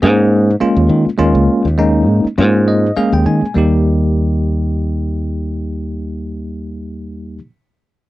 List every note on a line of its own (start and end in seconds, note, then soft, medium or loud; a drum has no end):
0.02 0.55 G#2 medium
0.02 0.50 G#3 medium
0.02 0.49 A#3 medium
0.02 0.50 C#4 medium
0.02 0.50 G#4 medium
0.61 1.08 G#3 medium
0.61 1.08 A#3 medium
0.61 1.08 C#4 medium
0.61 1.08 F4 medium
0.61 muted fingered electric bass stroke soft
0.77 0.89 D#2 medium
0.89 1.04 D#3 medium
1.06 muted fingered electric bass stroke soft
1.18 1.33 D#2 medium
1.18 1.66 G#3 medium
1.18 1.67 A#3 medium
1.18 1.67 C#4 medium
1.18 1.67 F4 medium
1.35 1.47 C#2 medium
1.65 2.08 D#2 medium
1.78 2.26 G#3 medium
1.78 2.26 A#3 medium
1.78 2.26 C#4 medium
1.78 2.26 D#4 medium
2.08 2.22 G#2 medium
2.25 muted fingered electric bass stroke soft
2.38 2.90 G#2 medium
2.38 2.85 G#3 medium
2.38 2.85 A#3 medium
2.38 2.86 C#4 medium
2.38 2.86 F4 medium
2.68 2.95 D#5 medium
2.97 3.44 G#3 medium
2.97 3.44 A#3 medium
2.97 3.45 C#4 medium
2.97 3.45 G#4 medium
2.97 3.11 F5 medium
2.97 muted fingered electric bass stroke soft
3.13 3.25 D#2 medium
3.13 3.26 G5 medium
3.26 3.40 D#3 medium
3.26 3.54 G#5 soft
3.42 muted fingered electric bass stroke soft
3.54 7.38 D#2 medium
3.54 7.38 G3 medium
3.54 7.38 A#3 medium
3.54 7.39 D#4 medium
3.54 7.39 G4 medium